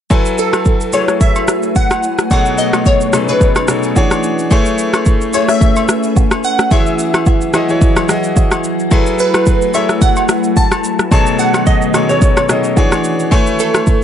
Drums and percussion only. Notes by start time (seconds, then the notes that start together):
0.11 kick, high agogo, shaker
0.26 shaker
0.38 shaker
0.53 cross-stick, high agogo, shaker
0.65 kick, shaker
0.81 shaker
0.93 high agogo, shaker
1.08 cross-stick, shaker
1.21 kick, shaker
1.36 high agogo, shaker
1.48 cross-stick, shaker
1.63 shaker
1.76 kick, low woodblock, shaker
1.91 cross-stick, high agogo, shaker
2.03 shaker
2.19 cross-stick, shaker
2.31 kick, high agogo, shaker
2.46 shaker
2.58 shaker
2.73 cross-stick, high agogo, shaker
2.85 kick, shaker
3.01 shaker
3.13 cross-stick, high agogo, shaker
3.28 shaker
3.41 kick, shaker
3.56 cross-stick, high agogo, shaker
3.68 cross-stick, shaker
3.83 shaker
3.96 kick, low woodblock, shaker
4.11 cross-stick, high agogo, shaker
4.23 shaker
4.39 shaker
4.51 kick, high agogo, shaker
4.66 shaker
4.78 shaker
4.94 cross-stick, high agogo, shaker
5.06 kick, shaker
5.21 shaker
5.33 high agogo, shaker
5.49 cross-stick, shaker
5.61 kick, shaker
5.76 high agogo, shaker
5.89 cross-stick, shaker
6.03 shaker
6.16 kick, low woodblock, shaker
6.31 cross-stick, high agogo, shaker
6.44 shaker
6.59 cross-stick, shaker
6.71 kick, high agogo, shaker
6.86 shaker
6.99 shaker
7.14 cross-stick, high agogo, shaker
7.26 kick, low woodblock, shaker
7.41 shaker
7.54 cross-stick, high agogo, shaker
7.69 shaker
7.81 kick, shaker
7.96 cross-stick, high agogo, shaker
8.09 cross-stick, shaker
8.24 shaker
8.36 kick, low woodblock, shaker
8.51 cross-stick, high agogo, shaker
8.64 shaker
8.79 shaker
8.91 kick, high agogo, shaker
9.06 shaker
9.19 shaker
9.34 cross-stick, high agogo, shaker
9.46 kick, shaker
9.62 shaker
9.74 high agogo, shaker
9.89 cross-stick, shaker
10.01 kick, shaker
10.16 high agogo, shaker
10.29 cross-stick, shaker
10.44 shaker
10.57 kick, low woodblock, shaker
10.72 cross-stick, high agogo, shaker
10.84 shaker
10.99 cross-stick, shaker
11.11 kick, high agogo, shaker
11.26 shaker
11.39 shaker
11.54 cross-stick, high agogo, shaker
11.66 kick, shaker
11.82 shaker
11.94 cross-stick, high agogo, shaker
12.09 shaker
12.22 kick, shaker
12.37 cross-stick, high agogo, shaker
12.49 cross-stick, shaker
12.64 shaker
12.77 kick, low woodblock, shaker
12.92 cross-stick, high agogo, shaker
13.04 shaker
13.19 shaker
13.32 kick, high agogo, shaker
13.47 shaker
13.59 shaker
13.74 cross-stick, high agogo, shaker
13.87 kick, shaker